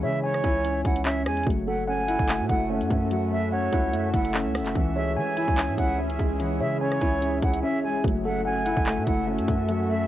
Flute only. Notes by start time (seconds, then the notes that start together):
0.03 E5
0.24 C#5
0.85 F#5
1.06 E5
1.26 G#5
1.67 F#5
1.88 G#5
2.50 F#5
3.32 E5
3.52 C#5
4.14 F#5
4.96 E5
5.17 G#5
5.78 F#5
6.60 E5
6.81 C#5
7.43 F#5
7.63 E5
7.84 G#5
8.25 F#5
8.45 G#5
9.07 F#5
9.89 E5